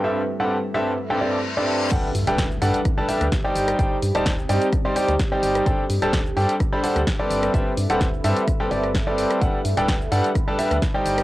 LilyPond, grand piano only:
\new Staff \with { instrumentName = "Grand piano" } { \time 4/4 \key g \major \tempo 4 = 128 <g, g c' g' a' b' e''>16 r8 <g, g c' g' a' b' fis''>16 r8 <g, g c' g' a' b' e''>16 r8 <g, g c' g' a' b' g''>16 <g, g c' g' a' b' d''>16 r8 <g, g c' g' a' b' d''>8. | <g d' g' a' b' fis''>16 r8 <g d' g' a' b' g''>16 r8 <g d' g' a' b' fis''>16 r8 <g d' g' a' b' a''>16 <g d' g' a' b' e''>16 r8 <g ees' g' c'' d'' g''>8. | <g ees' g' c'' d'' g''>16 r8 <g ees' g' c'' d'' a''>16 r8 <g ees' g' c'' d'' g''>16 r8 <g ees' g' c'' d'' c'''>16 <g ees' g' c'' d'' g''>16 r8 <g ees' g' c'' d'' g''>8. | <g d' g' a' c'' g''>16 r8 <g d' g' a' c'' a''>16 r8 <g d' g' a' c'' g''>16 r8 <g d' g' a' c'' b''>16 <g d' g' a' c'' fis''>16 r8 <g c' g' a' b' d''>8. |
<g c' g' a' b' e''>16 r8 <g c' g' a' b' fis''>16 r8 <g c' g' a' b' e''>16 r8 <g c' g' a' b' g''>16 <g c' g' a' b' d''>16 r8 <g c' g' a' b' d''>8. | <g d' g' a' b' fis''>16 r8 <g d' g' a' b' g''>16 r8 <g d' g' a' b' fis''>16 r8 <g d' g' a' b' a''>16 <g d' g' a' b' e''>16 r8 <g ees' g' c'' d'' g''>8. | }